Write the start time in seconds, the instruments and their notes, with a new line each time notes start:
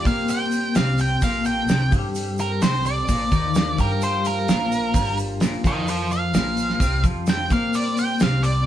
Already playing: harmonium G3 C4 G4 C5
0.05 upright bass A#2, clean electric guitar A#3, lead electric guitar F5, kick, open hi-hat, shaker
0.28 lead electric guitar G5, open hi-hat, shaker
0.52 open hi-hat, shaker
0.75 upright bass C2, clean electric guitar C3, lead electric guitar F5, snare, open hi-hat, shaker
0.98 lead electric guitar G5, open hi-hat, shaker
1.21 upright bass A#1, clean electric guitar A#2, harmonium A4, lead electric guitar F5, kick, open hi-hat, shaker
1.44 lead electric guitar G5, open hi-hat, shaker
1.68 upright bass C2, clean electric guitar C3, snare, open hi-hat, shaker
1.92 upright bass G2, clean electric guitar G3, kick, open hi-hat, shaker
2.15 open hi-hat, shaker
2.38 lead electric guitar A#4, open hi-hat, shaker
2.61 upright bass C2, clean electric guitar C3, lead electric guitar C5, snare, open hi-hat, shaker
2.85 lead electric guitar D5, open hi-hat, shaker
3.08 upright bass A#1, clean electric guitar A#2, harmonium F3 A#3 F4 A#4, kick, open hi-hat, shaker
3.31 upright bass D#2, clean electric guitar D#3, kick, open hi-hat, shaker
3.55 snare, open hi-hat, shaker
3.78 upright bass G2, clean electric guitar G3, lead electric guitar A#4, kick, open hi-hat, shaker
4.01 lead electric guitar C5, open hi-hat, shaker
4.25 lead electric guitar A#4, open hi-hat, shaker
4.48 upright bass A#1, clean electric guitar A#2, snare, open hi-hat, shaker
4.72 open hi-hat, shaker
4.93 upright bass G1, clean electric guitar G2, harmonium C5, kick, open hi-hat, shaker
5.17 open hi-hat, shaker
5.40 upright bass A#1, clean electric guitar A#2, snare, open hi-hat, shaker
5.64 upright bass F2, clean electric guitar F3, lead electric guitar A#4 G5, kick, open hi-hat, shaker
5.88 lead electric guitar C5 F5, open hi-hat, shaker
6.11 lead electric guitar F5, open hi-hat, shaker
6.34 upright bass A#1, clean electric guitar A#2, snare, open hi-hat, shaker
6.57 open hi-hat, shaker
6.70 snare
6.80 upright bass C2, clean electric guitar C3, harmonium G3 C4 G4, kick, open hi-hat, shaker
7.03 upright bass F2, clean electric guitar F3, kick, open hi-hat, shaker
7.27 lead electric guitar G5, snare, open hi-hat, shaker
7.50 upright bass A#2, clean electric guitar A#3, lead electric guitar F5, kick, open hi-hat, shaker
7.73 lead electric guitar D5, open hi-hat, shaker
7.97 lead electric guitar G5, open hi-hat, shaker
8.19 upright bass C2, clean electric guitar C3, lead electric guitar F5, snare, open hi-hat, shaker
8.43 lead electric guitar D5, open hi-hat, shaker